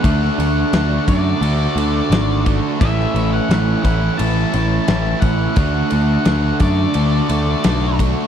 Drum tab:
RD |x-x-x-x-x-x-x-x-|x-x-x-x-x-x-x-x-|x-x-x-x-x-x-x-x-|
SD |-oo-o-------o---|-o--o-------o---|----o-------o---|
BD |o-----o-------o-|o-----o-------o-|o-----o-------o-|